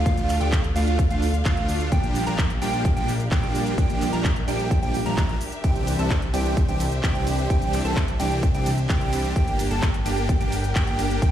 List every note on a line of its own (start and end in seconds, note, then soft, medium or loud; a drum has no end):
0.00 9.32 D4 medium
0.00 1.88 F4 medium
0.00 1.88 A4 medium
0.00 3.74 F5 medium
0.00 downlifter medium
0.06 0.38 D2 loud
0.06 0.38 A3 medium
0.06 0.38 D4 medium
0.06 0.38 F4 loud
0.06 0.38 F5 loud
0.06 kick loud
0.06 closed hi-hat medium
0.06 shaker soft
0.17 closed hi-hat soft
0.17 shaker soft
0.29 clap soft
0.29 open hi-hat loud
0.29 shaker medium
0.41 0.73 D2 loud
0.41 0.57 A3 medium
0.41 0.57 D4 medium
0.41 0.57 G4 medium
0.41 0.57 G5 medium
0.41 closed hi-hat soft
0.41 shaker soft
0.52 kick loud
0.52 clap loud
0.52 closed hi-hat medium
0.52 shaker soft
0.64 closed hi-hat soft
0.76 1.08 D2 loud
0.76 1.02 A3 medium
0.76 1.02 D4 medium
0.76 1.02 F4 medium
0.76 1.02 F5 medium
0.76 open hi-hat loud
0.76 shaker medium
0.87 closed hi-hat soft
0.87 shaker soft
0.99 kick loud
0.99 closed hi-hat medium
0.99 shaker soft
1.10 1.43 D2 loud
1.10 1.27 A3 medium
1.10 1.27 D4 medium
1.10 1.27 F4 medium
1.10 1.27 F5 medium
1.10 closed hi-hat soft
1.10 shaker soft
1.22 open hi-hat loud
1.22 shaker medium
1.34 closed hi-hat soft
1.34 shaker soft
1.45 1.90 D2 loud
1.45 1.89 A3 medium
1.45 1.89 D4 medium
1.45 1.89 F4 loud
1.45 1.89 F5 loud
1.45 kick loud
1.45 clap loud
1.45 closed hi-hat medium
1.45 shaker soft
1.57 closed hi-hat soft
1.69 open hi-hat loud
1.69 shaker medium
1.80 closed hi-hat soft
1.80 shaker soft
1.92 2.24 A#1 loud
1.92 2.24 F3 medium
1.92 2.24 G3 medium
1.92 2.24 A#3 medium
1.92 2.24 D4 medium
1.92 2.24 G4 loud
1.92 9.32 G4 medium
1.92 5.60 A#4 medium
1.92 2.24 G5 loud
1.92 kick loud
1.92 closed hi-hat medium
1.92 shaker soft
2.03 closed hi-hat soft
2.03 shaker soft
2.15 open hi-hat loud
2.15 shaker medium
2.27 2.59 A#1 loud
2.27 2.43 F3 medium
2.27 2.43 G3 medium
2.27 2.43 A#3 medium
2.27 2.43 D4 medium
2.27 2.43 A#4 medium
2.27 2.43 A#5 medium
2.27 closed hi-hat soft
2.27 shaker soft
2.38 kick loud
2.38 clap loud
2.38 closed hi-hat medium
2.38 shaker soft
2.50 closed hi-hat soft
2.62 2.94 A#1 loud
2.62 2.88 F3 medium
2.62 2.88 G3 medium
2.62 2.88 A#3 medium
2.62 2.88 D4 medium
2.62 2.88 G4 medium
2.62 2.88 G5 medium
2.62 open hi-hat loud
2.62 shaker medium
2.73 closed hi-hat soft
2.73 shaker soft
2.85 kick loud
2.85 closed hi-hat medium
2.85 shaker soft
2.96 3.29 A#1 loud
2.96 3.13 F3 medium
2.96 3.13 G3 medium
2.96 3.13 A#3 medium
2.96 3.13 D4 medium
2.96 3.13 G4 medium
2.96 3.13 G5 medium
2.96 closed hi-hat soft
2.96 shaker soft
3.08 open hi-hat loud
3.08 shaker medium
3.20 closed hi-hat soft
3.20 shaker soft
3.31 3.76 A#1 loud
3.31 3.75 F3 medium
3.31 3.75 G3 medium
3.31 3.75 A#3 medium
3.31 3.75 D4 medium
3.31 3.75 G4 loud
3.31 3.75 G5 loud
3.31 kick loud
3.31 clap loud
3.31 closed hi-hat medium
3.31 shaker soft
3.43 closed hi-hat soft
3.55 open hi-hat loud
3.55 shaker medium
3.66 closed hi-hat soft
3.66 shaker soft
3.78 4.10 A#1 loud
3.78 4.10 F3 medium
3.78 4.10 G3 medium
3.78 4.10 A#3 medium
3.78 4.10 D4 medium
3.78 4.10 G4 loud
3.78 9.32 E5 medium
3.78 4.10 G5 loud
3.78 kick loud
3.78 closed hi-hat medium
3.78 shaker soft
3.90 closed hi-hat soft
3.90 shaker soft
4.01 clap soft
4.01 open hi-hat loud
4.01 shaker medium
4.13 4.45 A#1 loud
4.13 4.29 F3 medium
4.13 4.29 G3 medium
4.13 4.29 A#3 medium
4.13 4.29 D4 medium
4.13 4.29 A#4 medium
4.13 4.29 A#5 medium
4.13 closed hi-hat soft
4.13 shaker soft
4.24 kick loud
4.24 clap loud
4.24 closed hi-hat medium
4.24 shaker soft
4.36 closed hi-hat soft
4.48 4.80 A#1 loud
4.48 4.74 F3 medium
4.48 4.74 G3 medium
4.48 4.74 A#3 medium
4.48 4.74 D4 medium
4.48 4.74 G4 medium
4.48 4.74 G5 medium
4.48 open hi-hat loud
4.48 shaker medium
4.59 closed hi-hat soft
4.59 shaker soft
4.71 kick loud
4.71 closed hi-hat medium
4.71 shaker soft
4.82 5.04 A#1 loud
4.82 4.99 F3 medium
4.82 4.99 G3 medium
4.82 4.99 A#3 medium
4.82 4.99 D4 medium
4.82 4.99 G4 medium
4.82 4.99 G5 medium
4.82 closed hi-hat soft
4.82 shaker soft
4.94 open hi-hat loud
4.94 shaker medium
5.06 5.15 A#1 loud
5.06 5.16 F3 medium
5.06 5.16 G3 medium
5.06 5.16 A#3 medium
5.06 5.16 D4 medium
5.06 5.16 A#4 medium
5.06 5.16 A#5 medium
5.06 closed hi-hat soft
5.06 shaker soft
5.17 5.31 A#1 loud
5.17 5.34 F3 medium
5.17 5.34 G3 medium
5.17 5.34 A#3 medium
5.17 5.34 D4 medium
5.17 5.34 A#4 loud
5.17 5.34 A#5 loud
5.17 kick loud
5.17 clap loud
5.17 closed hi-hat medium
5.17 shaker soft
5.29 closed hi-hat soft
5.41 open hi-hat loud
5.41 shaker medium
5.52 closed hi-hat soft
5.52 shaker soft
5.64 5.97 C2 loud
5.64 5.96 E3 medium
5.64 5.96 G3 medium
5.64 5.96 C4 medium
5.64 5.96 D4 medium
5.64 5.96 G4 loud
5.64 9.32 C5 medium
5.64 5.96 G5 loud
5.64 kick loud
5.64 closed hi-hat medium
5.64 ride medium
5.64 shaker soft
5.76 closed hi-hat soft
5.76 shaker soft
5.87 open hi-hat loud
5.87 ride medium
5.87 shaker medium
5.99 6.31 C2 loud
5.99 6.15 E3 medium
5.99 6.15 G3 medium
5.99 6.15 C4 medium
5.99 6.15 D4 medium
5.99 6.15 A4 medium
5.99 6.15 A5 medium
5.99 closed hi-hat soft
5.99 shaker soft
6.10 kick loud
6.10 clap loud
6.10 closed hi-hat medium
6.10 ride medium
6.10 shaker soft
6.22 closed hi-hat soft
6.34 6.66 C2 loud
6.34 6.60 E3 medium
6.34 6.60 G3 medium
6.34 6.60 C4 medium
6.34 6.60 D4 medium
6.34 6.60 G4 medium
6.34 6.60 G5 medium
6.34 open hi-hat loud
6.34 ride medium
6.34 shaker medium
6.45 closed hi-hat soft
6.45 shaker soft
6.57 kick loud
6.57 closed hi-hat medium
6.57 ride medium
6.57 shaker soft
6.69 7.01 C2 loud
6.69 6.85 E3 medium
6.69 6.85 G3 medium
6.69 6.85 C4 medium
6.69 6.85 D4 medium
6.69 6.85 G4 medium
6.69 6.85 G5 medium
6.69 closed hi-hat soft
6.69 shaker soft
6.80 open hi-hat loud
6.80 ride medium
6.80 shaker medium
6.92 closed hi-hat soft
6.92 shaker soft
7.03 7.48 C2 loud
7.03 7.47 E3 medium
7.03 7.47 G3 medium
7.03 7.47 C4 medium
7.03 7.47 D4 medium
7.03 7.47 G4 loud
7.03 7.47 G5 loud
7.03 kick loud
7.03 clap loud
7.03 closed hi-hat medium
7.03 ride medium
7.03 shaker soft
7.15 closed hi-hat soft
7.27 open hi-hat loud
7.27 ride medium
7.27 shaker medium
7.38 closed hi-hat soft
7.38 shaker soft
7.50 7.83 C2 loud
7.50 7.82 E3 medium
7.50 7.82 G3 medium
7.50 7.82 C4 medium
7.50 7.82 D4 medium
7.50 7.82 G4 loud
7.50 7.82 G5 loud
7.50 kick loud
7.50 closed hi-hat medium
7.50 ride medium
7.50 shaker soft
7.62 closed hi-hat soft
7.62 shaker soft
7.73 clap soft
7.73 open hi-hat loud
7.73 ride medium
7.73 shaker medium
7.85 8.17 C2 loud
7.85 8.01 E3 medium
7.85 8.01 G3 medium
7.85 8.01 C4 medium
7.85 8.01 D4 medium
7.85 8.01 A4 medium
7.85 8.01 A5 medium
7.85 closed hi-hat soft
7.85 shaker soft
7.96 kick loud
7.96 clap loud
7.96 closed hi-hat medium
7.96 ride medium
7.96 shaker soft
8.08 closed hi-hat soft
8.20 8.52 C2 loud
8.20 8.46 E3 medium
8.20 8.46 G3 medium
8.20 8.46 C4 medium
8.20 8.46 D4 medium
8.20 8.46 G4 medium
8.20 8.46 G5 medium
8.20 open hi-hat loud
8.20 ride medium
8.20 shaker medium
8.31 closed hi-hat soft
8.31 shaker soft
8.43 kick loud
8.43 closed hi-hat medium
8.43 ride medium
8.43 shaker soft
8.54 8.87 C2 loud
8.54 8.71 E3 medium
8.54 8.71 G3 medium
8.54 8.71 C4 medium
8.54 8.71 D4 medium
8.54 8.71 G4 medium
8.54 8.71 G5 medium
8.54 closed hi-hat soft
8.54 shaker soft
8.66 open hi-hat loud
8.66 ride medium
8.66 shaker medium
8.78 closed hi-hat soft
8.78 shaker soft
8.89 9.34 C2 loud
8.89 9.33 E3 medium
8.89 9.33 G3 medium
8.89 9.33 C4 medium
8.89 9.33 D4 medium
8.89 9.33 G4 loud
8.89 9.33 G5 loud
8.89 kick loud
8.89 clap loud
8.89 closed hi-hat medium
8.89 ride medium
8.89 shaker soft
9.01 closed hi-hat soft
9.13 open hi-hat loud
9.13 ride medium
9.13 shaker medium
9.24 closed hi-hat soft
9.24 shaker soft
9.36 9.69 G1 loud
9.36 9.68 A#3 medium
9.36 11.31 D4 medium
9.36 9.68 D4 medium
9.36 11.31 G4 medium
9.36 9.68 G4 loud
9.36 11.31 A#4 medium
9.36 11.31 G5 medium
9.36 9.68 G5 loud
9.36 kick loud
9.36 closed hi-hat medium
9.36 ride medium
9.36 shaker soft
9.48 closed hi-hat soft
9.48 shaker soft
9.59 open hi-hat loud
9.59 ride medium
9.59 shaker medium
9.71 10.03 G1 loud
9.71 9.87 A#3 medium
9.71 9.87 D4 medium
9.71 9.87 A4 medium
9.71 9.87 A5 medium
9.71 closed hi-hat soft
9.71 shaker soft
9.82 kick loud
9.82 clap loud
9.82 closed hi-hat medium
9.82 ride medium
9.82 shaker soft
9.94 closed hi-hat soft
10.06 10.38 G1 loud
10.06 10.32 A#3 medium
10.06 10.32 D4 medium
10.06 10.32 G4 medium
10.06 10.32 G5 medium
10.06 open hi-hat loud
10.06 ride medium
10.06 shaker medium
10.17 closed hi-hat soft
10.17 shaker soft
10.29 kick loud
10.29 closed hi-hat medium
10.29 ride medium
10.29 shaker soft
10.40 10.73 G1 loud
10.40 10.57 A#3 medium
10.40 10.57 D4 medium
10.40 10.57 G4 medium
10.40 10.57 G5 medium
10.40 closed hi-hat soft
10.40 shaker soft
10.52 open hi-hat loud
10.52 ride medium
10.52 shaker medium
10.64 closed hi-hat soft
10.64 shaker soft
10.75 11.20 G1 loud
10.75 11.19 A#3 medium
10.75 11.19 D4 medium
10.75 11.19 G4 loud
10.75 11.19 G5 loud
10.75 kick loud
10.75 clap loud
10.75 closed hi-hat medium
10.75 ride medium
10.75 shaker soft
10.87 closed hi-hat soft
10.99 open hi-hat loud
10.99 ride medium
10.99 shaker medium
11.10 closed hi-hat soft
11.10 shaker soft
11.22 11.31 G1 loud
11.22 11.31 A#3 medium
11.22 11.31 D4 medium
11.22 11.31 G5 loud
11.22 kick loud
11.22 closed hi-hat medium
11.22 ride medium
11.22 shaker soft